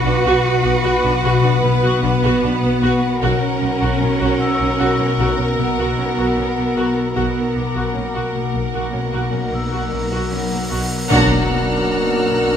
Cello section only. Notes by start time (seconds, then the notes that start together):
Already playing: F#4
1.63 B3
3.22 C#4
5.59 B3
7.16 B3
7.95 A#3
10.31 F#3
11.10 A#3